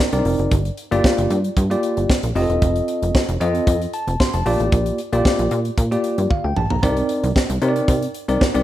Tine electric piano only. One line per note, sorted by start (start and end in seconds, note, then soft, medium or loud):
0.12 0.51 C4 medium
0.12 0.19 D4 medium
0.12 0.52 A#4 medium
0.12 0.52 D5 medium
0.19 0.55 D#4 medium
0.91 1.37 A#3 loud
0.91 1.37 F4 medium
0.91 1.38 G4 medium
0.91 1.38 D5 loud
1.70 2.08 A#3 medium
1.70 2.08 F4 medium
1.70 2.09 G4 medium
1.70 2.09 D5 medium
2.35 3.20 C4 medium
2.35 3.20 F4 medium
2.35 2.43 G4 medium
2.35 3.21 D#5 loud
2.42 3.24 A4 medium
3.41 3.80 C4 medium
3.41 3.80 F4 medium
3.41 3.80 A4 medium
3.41 3.80 D#5 loud
3.94 4.19 A5 medium
4.20 4.33 C6 medium
4.34 4.59 A5 medium
4.46 4.99 A#3 medium
4.46 4.99 F4 medium
4.46 4.99 G4 medium
4.46 4.99 D5 loud
5.12 5.58 A#3 medium
5.12 5.59 F4 medium
5.12 5.59 G4 medium
5.12 5.59 D5 loud
5.91 6.29 A#3 medium
5.91 6.29 F4 medium
5.91 6.29 G4 medium
5.91 6.30 D5 medium
6.30 6.44 F5 medium
6.44 6.56 G5 medium
6.57 6.70 A5 medium
6.71 6.96 A#5 medium
6.83 7.29 C4 medium
6.83 7.30 D#4 medium
6.83 7.30 A#4 medium
6.83 7.30 D5 medium
7.62 8.01 C4 medium
7.62 8.01 D#4 medium
7.62 8.01 A#4 medium
7.62 7.69 C#5 medium
7.69 8.05 D5 medium
8.28 8.43 C4 medium
8.28 8.43 D#4 medium
8.28 8.43 A#4 medium
8.28 8.44 D5 medium
8.54 8.63 C4 medium
8.54 8.63 D#4 medium
8.54 8.63 A#4 medium
8.54 8.63 D5 loud